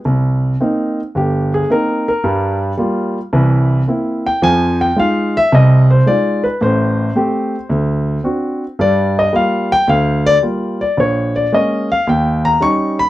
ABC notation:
X:1
M:4/4
L:1/8
Q:"Swing" 1/4=110
K:Cm
V:1 name="Grand piano"
z4 G A B B- | B z6 g | a g f =e _e c d =B | c4 z4 |
d e f g f d z d | _d =d e f g b _d' =b |]
V:2 name="Grand piano"
C,,2 [B,CE] z G,,,2 [B,CE] z | [G,,G,]2 [G,B,F] z [C,,=E,]2 [B,C=E] z | [F,,F,]2 [A,EF] z [C,,C,]2 [A,EF] z | [=A,,,=A,,]2 [=A,CG] z D,,2 [CD^F] z |
[G,,G,]2 [G,B,F] z D,,2 [G,B,F] z | B,,,2 [A,B,_D] z E,,2 [G,DE] z |]